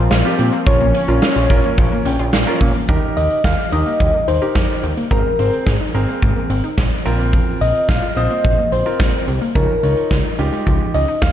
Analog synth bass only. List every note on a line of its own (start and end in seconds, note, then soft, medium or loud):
0.11 0.23 A#1 loud
0.39 0.51 A#2 loud
0.67 0.78 A#1 loud
0.81 0.92 A#1 loud
1.08 1.20 A#1 loud
1.36 1.48 A#1 loud
1.50 1.62 A#1 medium
1.78 1.90 A#1 loud
2.06 2.17 A#1 loud
2.19 2.31 A#1 loud
2.33 2.45 A#1 loud
2.61 2.73 A#2 loud
2.89 3.00 D#2 loud
3.17 3.28 D#2 loud
3.44 3.56 D#2 loud
3.72 3.84 D#2 loud
4.00 4.12 D#2 loud
4.28 4.39 D#2 loud
4.56 4.67 F2 medium
4.83 4.95 D#2 medium
5.11 5.23 G#1 loud
5.39 5.51 G#1 medium
5.67 5.78 G#1 loud
5.94 6.06 G#1 loud
6.22 6.34 G#1 loud
6.50 6.62 G#1 loud
6.78 6.89 A#1 loud
7.06 7.40 A#1 loud
7.61 7.73 A#1 loud
7.89 8.00 A#1 loud
8.16 8.28 A#1 loud
8.45 8.56 A#1 loud
8.72 8.84 A#1 loud
9.00 9.12 A#1 medium
9.28 9.39 C2 loud
9.55 9.67 C#2 loud
9.83 9.95 C#2 loud
10.11 10.23 C#2 loud
10.39 10.50 C#2 loud
10.67 10.78 C#2 loud
10.94 11.06 C#2 medium
11.22 11.32 D#2 medium